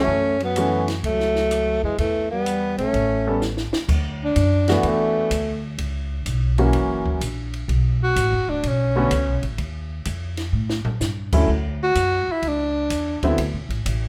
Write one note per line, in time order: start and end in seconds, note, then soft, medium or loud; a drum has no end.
0.00 0.37 A3 medium
0.00 0.39 C#4 medium
0.07 0.99 F#2 medium
0.40 0.85 F#3 medium
0.40 0.87 B3 medium
0.40 ride soft
0.56 0.85 E3 medium
0.56 0.85 A3 medium
0.56 0.86 C#4 medium
0.56 0.86 F#4 medium
0.56 hi-hat pedal medium
0.56 ride medium
0.88 snare soft
0.88 ride soft
1.03 1.79 C#2 medium
1.03 1.79 F#3 medium
1.03 1.80 A3 medium
1.03 kick soft
1.03 ride medium
1.20 snare soft
1.35 snare soft
1.51 cross-stick medium
1.51 hi-hat pedal medium
1.51 ride medium
1.83 1.97 F2 medium
1.83 1.97 E3 medium
1.83 1.98 G#3 medium
1.98 2.74 E2 medium
1.98 2.29 E3 medium
1.98 2.29 A3 medium
1.98 kick soft
1.98 ride medium
2.31 2.75 G3 medium
2.31 2.75 B3 medium
2.46 hi-hat pedal medium
2.46 ride medium
2.77 2.92 A#1 medium
2.77 3.38 A3 medium
2.77 3.37 C#4 medium
2.77 ride soft
2.93 3.69 A1 medium
2.93 kick soft
2.93 ride soft
3.27 3.40 G3 medium
3.27 3.40 B3 medium
3.27 3.40 C#4 medium
3.27 3.40 A4 medium
3.42 snare soft
3.42 hi-hat pedal medium
3.57 snare soft
3.73 muted upright bass stroke soft
3.73 snare medium
3.88 4.34 D2 medium
3.88 kick medium
3.88 crash medium
4.24 4.67 D4 medium
4.36 4.82 F#2 medium
4.36 kick soft
4.36 hi-hat pedal medium
4.36 ride medium
4.68 5.28 E3 medium
4.68 5.28 A3 medium
4.68 5.28 B3 medium
4.68 4.90 B3 medium
4.68 5.29 D4 medium
4.68 5.29 F#4 medium
4.68 snare medium
4.68 ride soft
4.83 5.29 E2 medium
4.83 kick soft
4.83 ride medium
4.88 5.65 A3 medium
5.31 5.77 D2 medium
5.31 kick soft
5.31 hi-hat pedal medium
5.31 ride medium
5.78 6.24 C#2 medium
5.78 kick soft
5.78 ride medium
6.26 6.72 B1 medium
6.26 kick soft
6.26 hi-hat pedal medium
6.26 ride medium
6.58 7.18 E3 medium
6.58 7.18 F#3 medium
6.58 7.18 A#3 medium
6.58 7.18 C#4 medium
6.58 7.18 F#4 medium
6.58 ride soft
6.73 7.19 F#1 medium
6.73 kick soft
6.73 ride medium
7.06 kick soft
7.21 7.67 A#1 medium
7.21 kick soft
7.21 hi-hat pedal medium
7.21 ride medium
7.54 ride soft
7.68 8.14 B1 medium
7.68 kick soft
7.68 ride medium
8.03 8.51 F#4 medium
8.16 8.33 A1 medium
8.16 kick soft
8.16 hi-hat pedal medium
8.16 ride medium
8.32 8.47 F#1 medium
8.48 8.62 D1 medium
8.48 8.70 D4 medium
8.63 9.09 B1 medium
8.63 kick soft
8.63 ride medium
8.68 9.45 C#4 medium
8.96 9.10 D3 medium
8.96 9.10 A3 medium
8.96 9.10 B3 medium
8.96 9.10 C#4 medium
8.96 9.10 F#4 medium
9.11 9.27 C#2 medium
9.11 kick soft
9.11 hi-hat pedal medium
9.11 ride medium
9.27 9.42 B1 medium
9.42 9.57 A1 medium
9.42 ride soft
9.58 10.04 D#2 medium
9.58 kick soft
9.58 ride medium
10.05 10.52 F2 medium
10.05 kick soft
10.05 hi-hat pedal soft
10.05 ride medium
10.37 snare soft
10.37 ride medium
10.53 10.83 A2 medium
10.70 snare medium
10.85 muted upright bass stroke soft
10.85 floor tom medium
11.00 11.47 G2 medium
11.00 snare medium
11.00 hi-hat pedal medium
11.32 11.47 D3 medium
11.32 11.47 F#3 medium
11.32 11.47 A3 medium
11.32 11.47 C#4 medium
11.32 11.47 E4 medium
11.32 kick medium
11.32 crash medium
11.48 11.94 D2 medium
11.48 kick soft
11.83 12.33 F#4 loud
11.95 12.25 F#2 medium
11.95 kick soft
11.95 hi-hat pedal medium
11.95 ride medium
12.28 muted upright bass stroke soft
12.32 12.50 E4 medium
12.42 12.89 C#2 medium
12.42 kick soft
12.42 ride medium
12.48 13.25 D4 medium
12.90 13.20 E2 medium
12.90 kick soft
12.90 hi-hat pedal medium
12.90 ride medium
13.22 13.37 D3 medium
13.22 13.37 F#3 medium
13.22 13.37 B3 medium
13.22 13.37 C4 medium
13.22 13.37 E4 medium
13.22 muted upright bass stroke soft
13.22 kick soft
13.22 ride soft
13.38 13.55 D2 medium
13.38 kick soft
13.38 ride medium
13.53 13.68 C2 medium
13.69 13.84 A1 medium
13.69 ride soft
13.86 14.08 A1 medium
13.86 kick soft
13.86 hi-hat pedal medium
13.86 ride medium